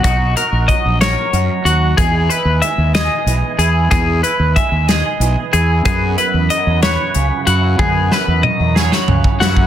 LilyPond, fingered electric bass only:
\new Staff \with { instrumentName = "Fingered electric bass" } { \clef bass \time 6/8 \key e \lydian \tempo 4. = 62 r8. ais,,16 r16 ais,,8 r16 fis,16 r16 dis,8 | e,8 r16 dis,16 r16 dis,8 r16 b,,16 r16 e,8 | e,8 r16 dis,16 r16 dis,8 r16 b,,16 r16 e,8 | fis,8 r16 e,16 r16 e,8 r16 cis,16 r16 fis,8 |
fis,8 r16 e,16 r16 e,8 r16 cis,16 r16 fis,8 | }